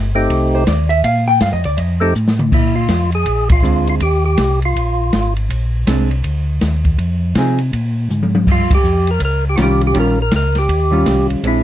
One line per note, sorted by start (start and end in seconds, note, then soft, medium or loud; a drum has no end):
0.00 0.29 G1 loud
0.15 0.64 A3 medium
0.15 0.64 C4 medium
0.15 0.64 D#4 medium
0.15 0.64 G4 medium
0.30 0.66 C2 medium
0.30 kick soft
0.30 ride medium
0.55 0.68 C5 loud
0.67 1.03 D#2 loud
0.67 0.89 D5 medium
0.67 kick soft
0.67 snare medium
0.67 hi-hat pedal medium
0.67 ride medium
0.89 1.03 E5 loud
0.89 ride soft
1.04 1.40 A#2 medium
1.04 1.27 F5 medium
1.04 kick soft
1.04 ride medium
1.28 1.41 G5 loud
1.40 1.53 G2 loud
1.40 1.52 F5 medium
1.40 kick soft
1.40 snare medium
1.40 hi-hat pedal medium
1.40 ride medium
1.53 1.66 F2 medium
1.53 1.65 D#5 medium
1.64 1.77 D2 medium
1.64 1.77 D5 medium
1.64 ride medium
1.77 2.14 F2 medium
1.77 2.01 D#5 loud
1.77 kick soft
1.77 ride medium
2.00 2.13 A3 medium
2.00 2.14 C4 medium
2.00 2.14 D#4 medium
2.00 2.14 G4 medium
2.00 2.10 A4 medium
2.15 2.52 A2 medium
2.15 hi-hat pedal medium
2.28 snare medium
2.39 mid tom medium
2.52 2.88 A#2 medium
2.52 2.75 E4 medium
2.52 kick medium
2.52 crash medium
2.76 3.10 F4 medium
2.88 3.25 F2 medium
2.88 kick soft
2.88 snare medium
2.88 hi-hat pedal medium
2.88 ride medium
3.12 3.49 G#4 loud
3.12 ride soft
3.26 3.63 A#1 medium
3.26 kick soft
3.26 ride medium
3.49 3.88 F4 medium
3.49 kick medium
3.49 ride medium
3.63 4.00 D2 medium
3.63 4.00 G#3 soft
3.63 4.01 C4 soft
3.63 4.01 D4 medium
3.63 hi-hat pedal medium
3.87 3.95 F4 medium
3.87 ride soft
4.00 4.37 D#2 medium
4.00 4.24 G4 medium
4.00 kick soft
4.00 ride medium
4.26 4.60 G4 medium
4.37 4.74 C2 loud
4.37 kick soft
4.37 snare medium
4.37 hi-hat pedal medium
4.37 ride medium
4.62 5.34 F4 medium
4.62 ride soft
4.76 5.12 A#1 medium
4.76 kick soft
4.76 ride medium
5.13 5.49 G#1 medium
5.13 kick soft
5.13 snare medium
5.13 hi-hat pedal medium
5.13 ride medium
5.36 ride soft
5.49 5.86 A#1 medium
5.49 kick soft
5.49 ride medium
5.87 6.23 C2 medium
5.87 6.08 G#3 medium
5.87 6.08 C4 medium
5.87 6.08 D4 medium
5.87 kick soft
5.87 snare medium
5.87 hi-hat pedal medium
5.87 ride medium
6.11 ride soft
6.24 6.60 D2 medium
6.24 kick soft
6.24 ride medium
6.61 6.97 D#2 medium
6.61 kick soft
6.61 snare medium
6.61 hi-hat pedal soft
6.61 ride medium
6.85 kick soft
6.85 ride soft
6.98 7.34 F2 medium
6.98 kick soft
6.98 ride medium
7.35 7.71 C3 medium
7.35 7.57 F3 medium
7.35 7.57 C4 medium
7.35 7.58 D#4 medium
7.35 7.58 G#4 medium
7.35 kick soft
7.35 snare medium
7.35 hi-hat pedal medium
7.35 ride medium
7.58 ride soft
7.73 8.09 A#2 medium
7.73 kick soft
7.73 ride medium
8.10 8.46 G#2 medium
8.10 hi-hat pedal medium
8.10 mid tom soft
8.23 high tom soft
8.35 high tom medium
8.47 8.69 G2 medium
8.47 kick medium
8.47 crash medium
8.52 8.73 F4 medium
8.71 8.77 G2 soft
8.71 kick medium
8.71 ride medium
8.75 9.10 G4 medium
8.83 9.20 F2 medium
8.83 hi-hat pedal medium
9.07 9.22 A#4 medium
9.07 ride soft
9.20 9.57 C#2 medium
9.20 kick soft
9.20 ride medium
9.25 9.45 A#4 medium
9.49 9.57 G4 medium
9.56 9.94 C2 medium
9.56 9.93 D#3 medium
9.56 9.93 G3 medium
9.56 9.94 C#4 medium
9.56 9.95 F4 medium
9.56 9.59 F#4 medium
9.56 kick soft
9.56 snare medium
9.56 hi-hat pedal medium
9.56 ride medium
9.62 9.82 G4 medium
9.81 ride soft
9.87 9.98 G4 medium
9.94 10.31 A#1 medium
9.94 10.16 D#3 medium
9.94 10.16 G3 medium
9.94 10.16 C#4 medium
9.94 10.17 F4 medium
9.94 kick soft
9.94 ride medium
10.00 10.19 A#4 medium
10.22 10.33 A#4 medium
10.31 10.68 C#2 medium
10.31 kick soft
10.31 snare medium
10.31 hi-hat pedal medium
10.31 ride medium
10.36 10.58 A#4 medium
10.55 11.27 G4 medium
10.55 snare soft
10.55 ride soft
10.69 11.05 D#2 medium
10.69 kick soft
10.69 ride medium
10.91 11.40 D#3 medium
10.91 11.40 G3 medium
10.91 11.41 C#4 medium
10.91 11.41 F4 medium
11.06 11.28 C2 medium
11.06 kick soft
11.06 snare medium
11.06 hi-hat pedal medium
11.06 ride medium
11.29 11.36 C2 soft
11.29 ride soft
11.43 11.63 A#1 medium
11.43 11.63 G#3 soft
11.43 11.63 C4 medium
11.43 11.63 D4 soft
11.43 kick soft
11.43 ride medium
11.47 11.63 E4 medium